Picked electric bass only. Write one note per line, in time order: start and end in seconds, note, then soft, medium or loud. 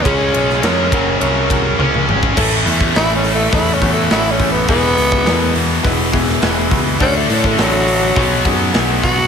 0.05 0.31 C#2 loud
0.34 0.60 B1 medium
0.63 0.89 F2 medium
0.92 1.18 F#1 medium
1.21 1.73 C2 medium
1.79 2.05 C#2 medium
2.08 2.34 G#1 medium
2.37 2.63 A1 loud
2.66 2.92 E2 medium
2.95 3.47 A1 loud
3.53 3.79 E2 medium
3.82 4.08 E2 loud
4.11 4.37 A1 medium
4.40 4.65 A1 loud
4.69 4.95 E1 loud
4.98 5.24 C#2 medium
5.26 5.78 E2 medium
5.85 6.36 E1 medium
6.42 6.68 E1 medium
6.71 6.97 C#2 loud
7.01 7.26 D2 loud
7.30 7.55 A2 medium
7.59 8.11 A1 loud
8.16 8.42 B1 medium
8.46 8.71 F#2 loud
8.75 9.01 B1 medium
9.04 9.27 B1 loud